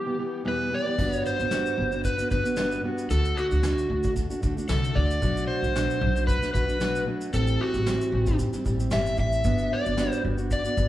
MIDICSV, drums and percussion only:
0, 0, Header, 1, 2, 480
1, 0, Start_track
1, 0, Tempo, 529101
1, 892, Time_signature, 4, 2, 24, 8
1, 9873, End_track
2, 0, Start_track
2, 0, Title_t, "Drums"
2, 893, Note_on_c, 9, 49, 80
2, 894, Note_on_c, 9, 36, 94
2, 984, Note_off_c, 9, 49, 0
2, 985, Note_off_c, 9, 36, 0
2, 1024, Note_on_c, 9, 82, 49
2, 1114, Note_off_c, 9, 82, 0
2, 1140, Note_on_c, 9, 82, 41
2, 1231, Note_off_c, 9, 82, 0
2, 1266, Note_on_c, 9, 82, 38
2, 1356, Note_off_c, 9, 82, 0
2, 1369, Note_on_c, 9, 38, 103
2, 1375, Note_on_c, 9, 82, 65
2, 1460, Note_off_c, 9, 38, 0
2, 1465, Note_off_c, 9, 82, 0
2, 1507, Note_on_c, 9, 82, 42
2, 1597, Note_off_c, 9, 82, 0
2, 1742, Note_on_c, 9, 82, 42
2, 1833, Note_off_c, 9, 82, 0
2, 1854, Note_on_c, 9, 82, 71
2, 1856, Note_on_c, 9, 36, 78
2, 1945, Note_off_c, 9, 82, 0
2, 1947, Note_off_c, 9, 36, 0
2, 1984, Note_on_c, 9, 82, 57
2, 2074, Note_off_c, 9, 82, 0
2, 2095, Note_on_c, 9, 82, 54
2, 2098, Note_on_c, 9, 36, 86
2, 2186, Note_off_c, 9, 82, 0
2, 2189, Note_off_c, 9, 36, 0
2, 2227, Note_on_c, 9, 82, 45
2, 2317, Note_off_c, 9, 82, 0
2, 2326, Note_on_c, 9, 82, 75
2, 2329, Note_on_c, 9, 38, 106
2, 2417, Note_off_c, 9, 82, 0
2, 2420, Note_off_c, 9, 38, 0
2, 2463, Note_on_c, 9, 82, 43
2, 2554, Note_off_c, 9, 82, 0
2, 2704, Note_on_c, 9, 82, 43
2, 2795, Note_off_c, 9, 82, 0
2, 2815, Note_on_c, 9, 82, 67
2, 2906, Note_off_c, 9, 82, 0
2, 2947, Note_on_c, 9, 82, 49
2, 3038, Note_off_c, 9, 82, 0
2, 3064, Note_on_c, 9, 82, 43
2, 3154, Note_off_c, 9, 82, 0
2, 3188, Note_on_c, 9, 82, 42
2, 3278, Note_off_c, 9, 82, 0
2, 3292, Note_on_c, 9, 38, 101
2, 3298, Note_on_c, 9, 82, 73
2, 3383, Note_off_c, 9, 38, 0
2, 3389, Note_off_c, 9, 82, 0
2, 3431, Note_on_c, 9, 82, 44
2, 3521, Note_off_c, 9, 82, 0
2, 3659, Note_on_c, 9, 82, 46
2, 3670, Note_on_c, 9, 36, 87
2, 3749, Note_off_c, 9, 82, 0
2, 3761, Note_off_c, 9, 36, 0
2, 3776, Note_on_c, 9, 36, 79
2, 3776, Note_on_c, 9, 82, 72
2, 3867, Note_off_c, 9, 36, 0
2, 3867, Note_off_c, 9, 82, 0
2, 3906, Note_on_c, 9, 82, 58
2, 3997, Note_off_c, 9, 82, 0
2, 4017, Note_on_c, 9, 82, 52
2, 4020, Note_on_c, 9, 36, 89
2, 4107, Note_off_c, 9, 82, 0
2, 4110, Note_off_c, 9, 36, 0
2, 4154, Note_on_c, 9, 82, 49
2, 4244, Note_off_c, 9, 82, 0
2, 4250, Note_on_c, 9, 82, 76
2, 4253, Note_on_c, 9, 38, 106
2, 4341, Note_off_c, 9, 82, 0
2, 4344, Note_off_c, 9, 38, 0
2, 4394, Note_on_c, 9, 82, 50
2, 4485, Note_off_c, 9, 82, 0
2, 4500, Note_on_c, 9, 36, 81
2, 4591, Note_off_c, 9, 36, 0
2, 4631, Note_on_c, 9, 82, 44
2, 4722, Note_off_c, 9, 82, 0
2, 4738, Note_on_c, 9, 36, 96
2, 4738, Note_on_c, 9, 82, 69
2, 4828, Note_off_c, 9, 82, 0
2, 4829, Note_off_c, 9, 36, 0
2, 4869, Note_on_c, 9, 82, 48
2, 4960, Note_off_c, 9, 82, 0
2, 5114, Note_on_c, 9, 82, 43
2, 5205, Note_off_c, 9, 82, 0
2, 5221, Note_on_c, 9, 38, 97
2, 5227, Note_on_c, 9, 82, 70
2, 5312, Note_off_c, 9, 38, 0
2, 5318, Note_off_c, 9, 82, 0
2, 5356, Note_on_c, 9, 82, 46
2, 5446, Note_off_c, 9, 82, 0
2, 5592, Note_on_c, 9, 82, 44
2, 5682, Note_off_c, 9, 82, 0
2, 5698, Note_on_c, 9, 36, 81
2, 5704, Note_on_c, 9, 82, 68
2, 5789, Note_off_c, 9, 36, 0
2, 5795, Note_off_c, 9, 82, 0
2, 5827, Note_on_c, 9, 38, 32
2, 5830, Note_on_c, 9, 82, 56
2, 5918, Note_off_c, 9, 38, 0
2, 5921, Note_off_c, 9, 82, 0
2, 5939, Note_on_c, 9, 36, 85
2, 5942, Note_on_c, 9, 82, 51
2, 6030, Note_off_c, 9, 36, 0
2, 6033, Note_off_c, 9, 82, 0
2, 6070, Note_on_c, 9, 82, 47
2, 6160, Note_off_c, 9, 82, 0
2, 6174, Note_on_c, 9, 82, 70
2, 6177, Note_on_c, 9, 38, 105
2, 6265, Note_off_c, 9, 82, 0
2, 6268, Note_off_c, 9, 38, 0
2, 6309, Note_on_c, 9, 82, 49
2, 6400, Note_off_c, 9, 82, 0
2, 6542, Note_on_c, 9, 82, 46
2, 6633, Note_off_c, 9, 82, 0
2, 6653, Note_on_c, 9, 82, 66
2, 6744, Note_off_c, 9, 82, 0
2, 6778, Note_on_c, 9, 82, 47
2, 6869, Note_off_c, 9, 82, 0
2, 7021, Note_on_c, 9, 82, 41
2, 7112, Note_off_c, 9, 82, 0
2, 7134, Note_on_c, 9, 38, 102
2, 7139, Note_on_c, 9, 82, 68
2, 7224, Note_off_c, 9, 38, 0
2, 7230, Note_off_c, 9, 82, 0
2, 7267, Note_on_c, 9, 82, 44
2, 7358, Note_off_c, 9, 82, 0
2, 7498, Note_on_c, 9, 82, 46
2, 7506, Note_on_c, 9, 36, 91
2, 7588, Note_off_c, 9, 82, 0
2, 7597, Note_off_c, 9, 36, 0
2, 7612, Note_on_c, 9, 36, 83
2, 7612, Note_on_c, 9, 82, 71
2, 7703, Note_off_c, 9, 36, 0
2, 7703, Note_off_c, 9, 82, 0
2, 7738, Note_on_c, 9, 38, 33
2, 7741, Note_on_c, 9, 82, 57
2, 7829, Note_off_c, 9, 38, 0
2, 7831, Note_off_c, 9, 82, 0
2, 7852, Note_on_c, 9, 82, 50
2, 7854, Note_on_c, 9, 36, 90
2, 7942, Note_off_c, 9, 82, 0
2, 7945, Note_off_c, 9, 36, 0
2, 7982, Note_on_c, 9, 82, 48
2, 8073, Note_off_c, 9, 82, 0
2, 8081, Note_on_c, 9, 82, 74
2, 8084, Note_on_c, 9, 38, 102
2, 8172, Note_off_c, 9, 82, 0
2, 8175, Note_off_c, 9, 38, 0
2, 8221, Note_on_c, 9, 82, 48
2, 8312, Note_off_c, 9, 82, 0
2, 8319, Note_on_c, 9, 82, 39
2, 8331, Note_on_c, 9, 36, 83
2, 8410, Note_off_c, 9, 82, 0
2, 8422, Note_off_c, 9, 36, 0
2, 8457, Note_on_c, 9, 82, 46
2, 8547, Note_off_c, 9, 82, 0
2, 8564, Note_on_c, 9, 82, 66
2, 8570, Note_on_c, 9, 36, 99
2, 8655, Note_off_c, 9, 82, 0
2, 8661, Note_off_c, 9, 36, 0
2, 8694, Note_on_c, 9, 82, 45
2, 8785, Note_off_c, 9, 82, 0
2, 8941, Note_on_c, 9, 82, 43
2, 9032, Note_off_c, 9, 82, 0
2, 9048, Note_on_c, 9, 38, 101
2, 9054, Note_on_c, 9, 82, 72
2, 9139, Note_off_c, 9, 38, 0
2, 9145, Note_off_c, 9, 82, 0
2, 9184, Note_on_c, 9, 82, 44
2, 9275, Note_off_c, 9, 82, 0
2, 9417, Note_on_c, 9, 82, 42
2, 9507, Note_off_c, 9, 82, 0
2, 9532, Note_on_c, 9, 36, 76
2, 9533, Note_on_c, 9, 82, 72
2, 9623, Note_off_c, 9, 36, 0
2, 9624, Note_off_c, 9, 82, 0
2, 9660, Note_on_c, 9, 82, 57
2, 9750, Note_off_c, 9, 82, 0
2, 9774, Note_on_c, 9, 36, 83
2, 9774, Note_on_c, 9, 82, 49
2, 9865, Note_off_c, 9, 36, 0
2, 9865, Note_off_c, 9, 82, 0
2, 9873, End_track
0, 0, End_of_file